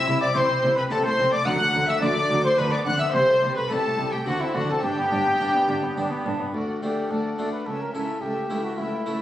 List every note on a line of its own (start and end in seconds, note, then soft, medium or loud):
0.00 0.21 E5 loud
0.00 0.21 E6 loud
0.07 0.15 C2 medium
0.07 0.15 C3 medium
0.07 0.32 C3 medium
0.07 0.21 E4 medium
0.21 0.35 C4 medium
0.21 0.36 D5 medium
0.21 0.27 D5 medium
0.21 0.35 D6 loud
0.34 0.43 C2 medium
0.34 0.43 C3 medium
0.34 0.60 C3 medium
0.34 0.75 C4 medium
0.34 0.48 E4 medium
0.34 0.75 G4 medium
0.34 0.77 C5 loud
0.34 0.76 C5 medium
0.34 0.76 C6 loud
0.48 0.63 C4 medium
0.62 0.71 C2 medium
0.62 0.88 C3 medium
0.62 0.71 C3 medium
0.62 0.77 E4 medium
0.76 0.90 C4 medium
0.76 0.90 B4 medium
0.76 0.83 B4 medium
0.76 0.83 B5 loud
0.90 0.99 C2 medium
0.90 1.16 C3 medium
0.90 0.99 C3 medium
0.90 1.42 C4 medium
0.90 1.04 C4 medium
0.90 1.42 E4 medium
0.90 1.05 A4 medium
0.90 1.05 A4 loud
0.90 1.43 A4 soft
0.90 0.96 A5 loud
1.04 1.19 A3 medium
1.04 1.33 C5 loud
1.04 1.32 C5 medium
1.04 1.32 C6 loud
1.18 1.27 C2 medium
1.18 1.43 C3 medium
1.18 1.27 C3 medium
1.18 1.33 C4 medium
1.32 1.47 A3 medium
1.32 1.47 D5 loud
1.32 1.46 D5 medium
1.32 1.46 D6 loud
1.45 1.55 D2 medium
1.45 1.54 D3 medium
1.45 1.71 D3 medium
1.45 1.59 F#3 medium
1.45 1.75 F#5 loud
1.45 1.87 F#5 loud
1.45 1.88 F#6 loud
1.60 1.74 A3 medium
1.73 1.82 D2 medium
1.73 1.99 D3 medium
1.73 1.82 D3 medium
1.73 1.88 F#3 medium
1.87 2.02 A3 medium
1.87 2.01 E5 loud
1.87 2.02 E5 loud
1.87 2.02 E6 loud
2.01 2.11 D2 medium
2.01 2.10 D3 medium
2.01 2.27 D3 medium
2.01 2.15 F#3 medium
2.01 2.42 A3 medium
2.01 2.42 D4 medium
2.01 2.43 A4 medium
2.01 2.42 D5 loud
2.01 2.43 D5 loud
2.01 2.43 D6 loud
2.16 2.30 A3 medium
2.30 2.38 D2 medium
2.30 2.55 D3 medium
2.30 2.38 D3 medium
2.30 2.44 F#3 medium
2.44 2.58 A3 medium
2.44 2.57 C5 loud
2.44 2.60 C5 medium
2.44 2.58 C6 loud
2.57 2.66 D2 medium
2.57 2.83 D3 medium
2.57 2.66 D3 medium
2.57 3.10 B3 medium
2.57 2.70 D4 medium
2.57 3.10 D4 medium
2.57 3.10 F#4 medium
2.57 2.72 B4 loud
2.57 2.72 B4 medium
2.57 2.71 B5 loud
2.71 2.86 B3 medium
2.71 2.85 D5 loud
2.71 2.85 D5 medium
2.71 2.77 D6 loud
2.85 2.94 D2 medium
2.85 2.93 D3 medium
2.85 3.11 D3 medium
2.85 3.00 D4 medium
2.85 2.99 F#5 loud
2.85 2.99 F#5 medium
2.85 2.99 F#6 loud
2.98 3.14 B3 medium
2.98 3.13 E5 loud
2.98 3.13 E6 loud
3.12 3.22 C2 medium
3.12 3.22 C3 medium
3.12 3.39 C3 medium
3.12 3.27 G3 medium
3.12 3.55 C5 loud
3.12 3.55 C6 loud
3.27 3.42 A3 medium
3.41 3.50 C2 medium
3.41 3.67 C3 medium
3.41 3.50 C3 medium
3.41 3.56 G3 medium
3.55 3.70 A3 medium
3.55 3.69 B4 loud
3.55 3.69 B4 medium
3.55 3.70 B5 loud
3.69 3.78 C2 medium
3.69 3.95 C3 medium
3.69 3.78 C3 medium
3.69 3.83 G3 medium
3.69 4.10 A3 medium
3.69 4.10 E4 medium
3.69 4.11 G4 medium
3.69 4.12 A4 loud
3.69 4.14 A4 loud
3.69 4.12 A5 loud
3.84 3.98 A3 medium
3.98 4.06 C2 medium
3.98 4.23 C3 medium
3.98 4.06 C3 medium
3.98 4.12 G3 medium
4.11 4.27 A3 medium
4.11 4.17 G4 medium
4.11 4.28 G4 medium
4.11 4.26 G5 loud
4.26 4.34 D2 medium
4.26 4.34 D3 medium
4.26 4.52 D3 medium
4.26 4.79 A3 medium
4.26 4.79 C4 medium
4.26 4.40 D4 medium
4.26 4.80 D4 soft
4.26 4.40 F#4 loud
4.26 4.42 F#4 medium
4.26 4.40 F#5 loud
4.40 4.55 C4 medium
4.40 4.54 E4 medium
4.40 4.56 E4 medium
4.40 4.54 E5 loud
4.54 4.63 D2 medium
4.54 4.62 D3 medium
4.54 4.80 D3 medium
4.54 4.69 D4 medium
4.54 4.69 F#4 medium
4.54 4.68 F#4 medium
4.54 4.68 F#5 loud
4.68 4.83 C4 medium
4.68 4.83 A4 medium
4.68 4.83 A5 loud
4.82 4.91 G1 medium
4.82 4.91 G2 medium
4.82 5.09 G2 medium
4.82 4.97 D4 medium
4.82 6.23 G4 loud
4.82 6.25 G5 loud
4.98 5.12 B3 medium
5.11 5.20 G1 medium
5.11 5.19 G2 medium
5.11 5.37 G2 medium
5.11 5.26 D4 medium
5.26 5.40 B3 medium
5.40 5.48 G1 medium
5.40 5.48 G2 medium
5.40 5.66 G2 medium
5.40 5.82 B3 medium
5.40 5.54 D4 medium
5.40 5.82 D4 medium
5.55 5.69 B3 medium
5.69 5.77 G1 medium
5.69 5.77 G2 medium
5.69 5.94 G2 medium
5.69 5.83 D4 medium
5.83 5.97 B3 medium
5.97 6.05 G1 medium
5.97 6.05 G2 medium
5.97 6.23 G2 medium
5.97 6.39 B3 medium
5.97 6.10 D4 medium
5.97 6.39 D4 medium
6.11 6.25 B3 medium
6.25 6.34 G1 medium
6.25 6.34 G2 medium
6.25 6.52 G2 medium
6.25 6.40 D4 medium
6.40 6.54 B3 medium
6.53 6.62 D2 soft
6.53 6.80 D2 soft
6.53 6.81 A3 soft
6.53 6.67 F#4 medium
6.53 6.81 D5 soft
6.53 6.81 F#5 soft
6.69 6.84 F#4 soft
6.82 6.90 D2 soft
6.82 7.08 D2 soft
6.82 7.09 A3 soft
6.82 7.23 A3 soft
6.82 7.24 D4 soft
6.82 7.12 G4 medium
6.82 7.10 D5 soft
6.82 7.10 F#5 soft
7.10 7.36 D2 soft
7.10 7.19 D2 soft
7.10 7.37 A3 soft
7.10 7.52 A4 medium
7.10 7.37 D5 soft
7.10 7.37 F#5 soft
7.38 7.64 D2 soft
7.38 7.47 D2 soft
7.38 7.66 A3 soft
7.38 7.59 A3 soft
7.38 7.59 D4 soft
7.38 7.66 D5 soft
7.38 7.66 F#5 soft
7.52 7.67 B4 medium
7.66 7.92 C#2 soft
7.66 7.75 C#2 soft
7.66 7.93 C#4 soft
7.66 7.82 A4 medium
7.66 7.93 E5 soft
7.66 7.93 G5 soft
7.80 7.93 A#4 medium
7.93 8.20 C#2 soft
7.93 8.03 C#2 soft
7.93 8.22 C#4 soft
7.93 8.15 C#4 soft
7.93 8.15 E4 soft
7.93 8.23 A4 medium
7.93 8.21 E5 soft
7.93 8.21 G5 soft
8.21 8.47 C#2 soft
8.21 8.31 C#2 soft
8.21 8.49 A3 soft
8.21 8.65 G4 medium
8.21 8.50 E5 soft
8.21 8.49 G5 soft
8.50 8.75 C#2 soft
8.50 8.58 C#2 soft
8.50 8.77 A3 soft
8.50 8.90 A3 soft
8.50 8.91 E4 soft
8.50 8.77 E5 soft
8.50 8.77 G5 soft
8.64 8.80 F#4 medium
8.78 8.86 C#2 soft
8.78 9.03 C#2 soft
8.78 9.05 A3 soft
8.78 9.22 E4 medium
8.78 9.05 E5 soft
8.78 9.05 G5 soft
9.06 9.22 C#2 soft
9.06 9.14 C#2 soft
9.06 9.22 A3 soft
9.06 9.22 E4 soft
9.06 9.22 E5 soft
9.06 9.22 G5 soft